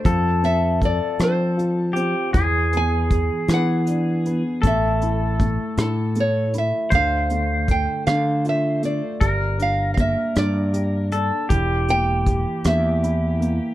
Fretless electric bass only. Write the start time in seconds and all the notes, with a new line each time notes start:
0.05 F2
1.20 F3
2.34 E2
3.48 E3
4.64 A1
5.78 A2
6.92 D2
8.07 D3
9.21 G1
10.36 G2
11.50 E1
12.65 E2